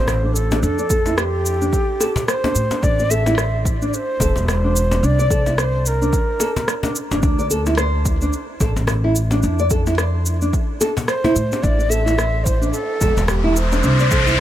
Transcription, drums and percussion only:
0.08 cajon bass medium
0.08 cross-stick medium
0.08 cabasa soft
0.36 cabasa medium
0.51 cajon slap medium
0.51 cabasa soft
0.63 cabasa soft
0.79 cabasa soft
0.90 kick loud
0.90 cabasa medium
1.06 cajon slap medium
1.06 cabasa soft
1.18 cross-stick loud
1.18 cabasa soft
1.46 cabasa medium
1.62 cabasa soft
1.73 kick medium
1.73 cabasa soft
2.00 cajon slap medium
2.00 cabasa medium
2.16 cajon bass medium
2.16 cajon slap medium
2.16 cabasa soft
2.28 cross-stick medium
2.28 cabasa soft
2.44 cajon bass medium
2.44 cajon slap medium
2.55 cabasa medium
2.71 cajon slap medium
2.71 cabasa soft
2.83 kick loud
2.83 cabasa soft
2.99 cabasa soft
3.11 cabasa medium
3.26 cajon slap medium
3.26 cabasa soft
3.38 cross-stick medium
3.38 cabasa soft
3.65 kick medium
3.65 cabasa medium
3.82 cabasa soft
3.94 cabasa soft
4.20 cajon bass medium
4.20 kick loud
4.20 cabasa medium
4.36 cajon slap medium
4.36 cabasa soft
4.48 cajon bass medium
4.48 cross-stick medium
4.48 cabasa soft
4.76 cabasa medium
4.91 cajon slap medium
4.91 cabasa soft
5.04 cabasa soft
5.19 cabasa soft
5.30 kick loud
5.30 cabasa medium
5.46 cajon slap medium
5.46 cabasa soft
5.58 cross-stick medium
5.58 cabasa soft
5.86 cabasa medium
6.02 cabasa soft
6.13 kick loud
6.13 cabasa soft
6.40 cajon slap medium
6.40 cabasa medium
6.56 cajon bass medium
6.56 cajon slap medium
6.56 cabasa soft
6.68 cross-stick medium
6.68 cabasa soft
6.83 cajon bass medium
6.83 cajon slap medium
6.83 cabasa soft
6.96 cabasa medium
7.11 cajon slap medium
7.11 cabasa soft
7.23 kick loud
7.23 cabasa soft
7.39 cabasa soft
7.51 cabasa medium
7.66 cajon slap medium
7.66 cabasa soft
7.78 cross-stick medium
7.78 cabasa soft
8.05 kick medium
8.05 cabasa medium
8.21 cabasa soft
8.33 cabasa soft
8.61 kick loud
8.61 cajon bass medium
8.61 cabasa medium
8.76 cajon slap medium
8.76 cabasa soft
8.87 cajon bass medium
8.87 cross-stick medium
8.87 cabasa soft
9.16 cabasa medium
9.31 cajon slap medium
9.31 cabasa soft
9.43 cabasa soft
9.59 cabasa soft
9.70 kick loud
9.70 cabasa medium
9.86 cajon slap medium
9.86 cabasa soft
9.98 cross-stick medium
9.98 cabasa soft
10.26 cabasa medium
10.42 cabasa soft
10.53 kick loud
10.53 cabasa soft
10.81 cajon slap medium
10.81 cabasa medium
10.97 cajon bass medium
10.97 cajon slap medium
10.97 cabasa soft
11.08 cross-stick medium
11.08 cabasa soft
11.24 cajon bass medium
11.24 cajon slap medium
11.36 cabasa medium
11.52 cajon slap medium
11.52 cabasa soft
11.64 kick loud
11.64 cabasa soft
11.80 cabasa soft
11.91 cabasa medium
12.07 cajon slap medium
12.07 cabasa soft
12.19 cross-stick medium
12.19 cabasa soft
12.46 kick medium
12.46 cabasa medium
12.62 cabasa soft
12.74 cabasa soft
13.01 kick loud
13.01 cajon bass medium
13.01 cabasa medium
13.17 cajon slap medium
13.17 cabasa soft
13.28 cajon bass medium
13.28 cross-stick medium
13.28 cabasa soft
13.56 cabasa medium
13.72 cajon slap medium
13.72 cabasa soft
13.83 cabasa soft
13.99 cabasa soft
14.11 kick loud
14.11 cabasa medium
14.27 cajon slap medium
14.27 cabasa soft

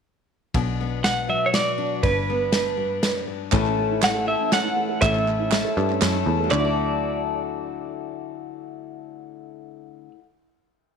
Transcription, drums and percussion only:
0.54 kick medium
0.54 ride medium
1.04 snare medium
1.04 ride medium
1.54 snare medium
1.54 ride medium
2.03 kick medium
2.03 ride medium
2.52 snare medium
2.52 ride medium
3.03 snare medium
3.03 ride medium
3.52 kick loud
3.52 clap medium
3.52 ride soft
3.66 clap soft
4.03 snare medium
4.03 clap medium
4.03 ride medium
4.52 snare medium
4.52 clap medium
4.52 ride medium
5.02 kick loud
5.02 clap medium
5.02 ride medium
5.15 clap soft
5.28 clap soft
5.52 snare medium
5.52 clap medium
5.52 ride medium
5.78 clap soft
5.90 clap soft
6.02 snare medium
6.02 clap medium
6.02 ride medium
6.14 clap soft
6.51 clap medium

